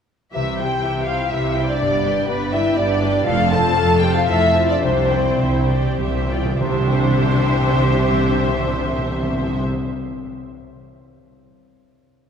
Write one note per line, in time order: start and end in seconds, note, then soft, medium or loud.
0.33 0.78 C2 soft
0.33 1.83 C3 soft
0.33 0.79 C3 soft
0.33 0.57 E3 soft
0.33 0.57 E4 soft
0.33 0.58 G4 soft
0.33 0.57 E5 soft
0.33 0.40 E5 medium
0.33 0.58 E5 soft
0.57 0.84 G3 soft
0.57 1.83 C4 soft
0.57 0.84 E4 soft
0.57 1.07 G4 medium
0.57 0.83 C5 soft
0.57 0.83 G5 soft
0.57 1.09 G5 soft
0.57 1.07 G5 soft
0.82 1.27 C2 soft
0.82 1.27 C3 soft
0.82 1.08 E3 soft
0.82 1.55 E4 soft
0.82 1.08 G4 soft
0.82 1.08 E5 soft
1.06 1.33 G3 soft
1.06 1.33 E4 soft
1.06 1.32 F4 medium
1.06 2.52 G4 soft
1.06 1.32 C5 soft
1.06 1.31 F5 medium
1.06 1.32 F5 soft
1.06 1.31 G5 soft
1.29 1.75 C2 soft
1.29 1.75 C3 soft
1.29 1.55 E3 soft
1.29 1.68 E4 medium
1.29 1.55 G4 soft
1.29 1.53 E5 soft
1.29 1.68 E5 medium
1.29 1.68 E5 soft
1.33 1.83 C5 soft
1.54 1.81 G3 soft
1.54 1.83 E4 soft
1.54 1.81 E4 soft
1.54 1.80 C5 soft
1.54 1.80 G5 soft
1.67 2.29 D4 medium
1.67 2.27 D5 medium
1.78 2.24 G1 medium
1.78 2.24 G2 medium
1.78 3.29 G2 soft
1.78 2.04 B3 soft
1.78 2.04 G4 soft
1.78 2.02 D5 soft
2.03 2.30 G3 soft
2.03 3.29 B3 soft
2.03 2.30 D4 soft
2.03 2.29 B4 soft
2.03 2.29 G5 soft
2.27 2.72 G1 medium
2.27 2.73 G2 medium
2.27 2.39 B3 medium
2.27 2.54 B3 soft
2.27 3.01 D4 soft
2.27 2.54 G4 soft
2.27 2.52 B4 medium
2.27 2.53 B4 medium
2.27 2.53 D5 soft
2.52 2.78 G3 soft
2.52 2.78 D4 soft
2.52 2.77 E4 medium
2.52 3.29 G4 soft
2.52 2.78 B4 soft
2.52 2.77 E5 medium
2.52 2.58 E5 medium
2.52 2.78 G5 soft
2.76 3.21 G1 medium
2.76 3.21 G2 medium
2.76 3.01 B3 medium
2.76 3.27 D4 medium
2.76 3.01 G4 medium
2.76 3.29 B4 medium
2.76 3.00 D5 medium
2.76 3.27 D5 medium
2.76 3.28 D5 medium
3.01 3.27 G3 medium
3.01 3.29 D4 soft
3.01 3.27 D4 soft
3.01 3.27 B4 medium
3.01 3.27 G5 soft
3.25 3.71 F1 medium
3.25 4.86 F2 medium
3.25 3.71 F2 medium
3.25 3.50 A3 medium
3.25 3.37 F4 medium
3.25 3.50 A4 medium
3.25 3.51 F5 medium
3.25 3.49 F5 medium
3.25 3.53 F5 medium
3.51 6.67 C4 soft
3.51 3.77 C4 medium
3.51 3.77 F4 medium
3.51 4.02 A4 medium
3.51 3.77 C5 medium
3.51 4.02 A5 medium
3.51 3.77 A5 medium
3.51 4.03 A5 medium
3.76 4.22 F1 medium
3.76 4.23 F2 medium
3.76 4.02 A3 medium
3.76 4.54 F4 soft
3.76 4.03 A4 medium
3.76 4.03 F5 medium
4.02 4.29 C4 medium
4.02 4.29 F4 medium
4.02 4.16 G4 medium
4.02 4.85 A4 soft
4.02 4.29 C5 medium
4.02 4.15 G5 medium
4.02 4.09 G5 medium
4.02 4.29 A5 medium
4.13 4.28 F5 medium
4.13 4.29 F5 medium
4.18 4.30 F4 medium
4.27 4.76 F1 medium
4.27 4.77 F2 medium
4.27 4.54 A3 medium
4.27 4.53 A4 medium
4.27 4.54 A4 medium
4.27 8.19 C5 medium
4.27 4.68 E5 medium
4.27 4.53 F5 medium
4.31 4.70 E4 medium
4.54 4.83 C4 soft
4.54 4.86 F4 soft
4.54 4.83 F4 soft
4.54 4.81 C5 soft
4.54 4.83 A5 soft
4.69 4.85 D4 medium
4.69 4.82 D5 medium
4.69 4.83 D5 medium
4.82 5.33 C2 medium
4.82 4.90 C3 soft
4.82 6.59 C3 medium
4.82 5.98 C4 medium
4.82 5.09 D4 medium
4.82 5.09 G4 soft
4.82 5.09 C5 soft
4.82 5.96 C5 medium
4.82 5.97 C5 medium
4.82 5.09 E5 soft
5.10 5.41 C4 soft
5.10 6.73 D4 soft
5.10 5.39 E4 soft
5.10 5.40 D5 soft
5.10 5.40 G5 soft
5.27 5.34 C3 soft
5.35 5.43 C3 soft
5.40 5.92 C2 medium
5.40 6.29 E4 soft
5.40 5.67 E4 medium
5.40 5.70 C5 soft
5.40 5.70 E5 soft
5.44 5.53 C3 soft
5.54 5.61 C3 soft
5.62 5.70 C3 soft
5.67 6.29 G4 medium
5.67 6.88 G4 soft
5.67 5.98 D5 soft
5.67 5.98 G5 soft
5.71 5.79 C3 medium
5.81 5.88 C3 medium
5.89 5.97 C3 medium
5.98 6.53 C2 medium
5.98 6.54 C2 medium
5.98 6.07 C3 medium
5.98 6.28 C5 soft
5.98 9.90 D5 soft
5.98 6.28 E5 soft
6.08 6.15 C3 medium
6.16 6.24 C3 medium
6.26 6.34 C3 medium
6.30 6.81 E4 soft
6.30 6.60 F4 medium
6.30 6.61 D5 soft
6.30 6.61 G5 soft
6.35 6.43 C3 medium
6.45 6.54 C3 medium
6.60 9.61 C2 medium
6.60 6.67 C3 medium
6.60 10.51 C3 medium
6.60 9.60 C4 medium
6.60 9.61 D4 medium
6.60 9.61 G4 medium
6.60 9.62 C5 medium
6.60 9.63 E5 medium
6.60 9.61 C6 medium
6.67 6.73 C3 medium
6.67 9.69 C4 medium
6.74 6.80 C3 medium
6.74 9.75 D4 medium
6.80 6.86 C3 medium
6.80 9.83 E4 medium
6.86 6.93 C3 medium
6.86 9.89 G4 medium
6.93 6.99 C3 medium
6.93 9.96 E5 medium
6.99 7.05 C3 medium
7.05 7.11 C3 medium
7.11 7.17 C3 medium
7.17 7.23 C3 medium
7.23 7.29 C3 medium
7.29 7.36 C3 medium
7.36 7.42 C3 medium
7.42 7.48 C3 medium
7.48 7.54 C3 medium
7.54 7.61 C3 medium
7.61 7.67 C3 medium
7.67 7.73 C3 medium
7.73 7.80 C3 medium
7.80 7.86 C3 medium
7.86 7.92 C3 medium
7.92 7.99 C3 medium
7.99 8.05 C3 medium
8.05 8.11 C3 medium
8.11 8.17 C3 medium
8.17 8.24 C3 medium
8.24 8.30 C3 medium
8.30 8.36 C3 medium
8.36 8.43 C3 medium
8.43 8.48 C3 medium
8.48 8.54 C3 medium
8.55 8.61 C3 medium
8.61 8.67 C3 medium
8.67 8.73 C3 medium
8.73 8.79 C3 medium
8.79 8.86 C3 medium
8.86 8.92 C3 medium
8.92 8.98 C3 medium
8.98 9.05 C3 medium
9.05 9.11 C3 medium
9.11 9.17 C3 medium
9.17 9.23 C3 medium
9.23 9.29 C3 medium
9.29 9.35 C3 medium
9.35 9.42 C3 medium
9.42 9.48 C3 medium
9.48 9.54 C3 medium
9.55 9.61 C3 medium